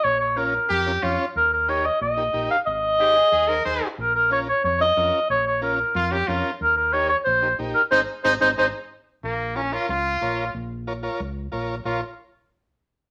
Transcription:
<<
  \new Staff \with { instrumentName = "Clarinet" } { \time 4/4 \key bes \dorian \tempo 4 = 183 des''8 des''8 bes'4. r4. | bes'8 bes'8 des''8 ees''8 ees''4. f''8 | ees''2.~ ees''8 r8 | bes'8 bes'8 des''8 des''8 des''8 ees''4. |
des''8 des''8 bes'4. r4. | bes'8 bes'8 des''8 des''8 c''4 r8 bes'8 | c''8 r8 c''8 c''8 c''8 r4. | r1 |
r1 | r1 | }
  \new Staff \with { instrumentName = "Transistor combo organ" } { \time 4/4 \key bes \dorian r4 <des' f' bes'>8 r4 <des' f' bes'>8 <des' f' des''>8 r8 | r4 <ees' g' bes'>8 r4 <ees' g' bes'>8 <ees' g' bes'>8 r8 | r4 <ees' aes' c''>8 r4 <ees' aes' c''>8 <ees' aes' c''>8 r8 | r4 <des' f' bes'>8 r4 <des' f' bes'>8 <des' f' bes'>8 r8 |
r4 <des' f' bes'>8 r4 <des' f' bes'>8 <des' f' bes'>8 r8 | r4 <ees' g' bes'>8 r4 <ees' g' bes'>8 <ees' g' bes'>8 r8 | <c' ees' aes'>8 r8 <c' ees' aes'>8 <c' ees' aes'>8 <c' ees' aes'>8 r4. | r4 <f' bes' des''>8 <f' bes' des''>8 r4 <f' bes' des''>8 r8 |
r4 <f' bes' des''>8 <f' bes' des''>8 r4 <f' bes' des''>8 r8 | <f' bes' des''>8 r2. r8 | }
  \new Staff \with { instrumentName = "Trumpet" } { \time 4/4 \key bes \dorian r2 g'4 f'8. r16 | r1 | r4 g'8 aes'8 aes'8 bes'8 c''8. r16 | r1 |
r2 f'8 g'8 f'8. r16 | r1 | ees'8 r8 ees'8 ees'8 ees'8 r4. | bes4 des'8 f'8 f'2 |
r1 | f'8 r2. r8 | }
  \new Staff \with { instrumentName = "Fingered electric bass" } { \clef bass \time 4/4 \key bes \dorian bes,,2 f,4 f,8 r8 | ees,2 bes,,4 bes,,8 r8 | aes,,2 ees,4 ees,8 r8 | bes,,2 f,4 f,8 r8 |
bes,,2 f,4 f,8 r8 | ees,2 bes,,4 bes,,8 r8 | aes,,8 r8 aes,,8 aes,,8 aes,,8 r4. | bes,,2 des,4 bes,,4 |
bes,,2 des,4 bes,,4 | bes,,8 r2. r8 | }
>>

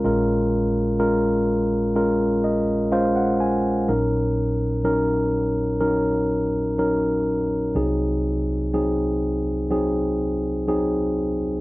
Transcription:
<<
  \new Staff \with { instrumentName = "Tine electric piano" } { \time 4/4 \key ees \dorian \tempo 4 = 62 << { r2 r8 ees''8 f''16 ges''16 aes''8 | r1 | r1 | } \\ { <aes des' f' bes'>8 r8 <aes des' f' bes'>8 r8 <aes des' f' bes'>8 r8 <aes des' f' c''>8 r8 | <ges des' ees' bes'>8 r8 <ges des' ees' bes'>8 r8 <ges des' ees' bes'>8 r8 <ges des' ees' bes'>8 r8 | <ges c' ees' aes'>8 r8 <ges c' ees' aes'>8 r8 <ges c' ees' aes'>8 r8 <ges c' ees' aes'>8 r8 | } >> }
  \new Staff \with { instrumentName = "Tine electric piano" } { \clef bass \time 4/4 \key ees \dorian <bes,, bes,>1 | <bes,, bes,>1 | <c, c>1 | }
>>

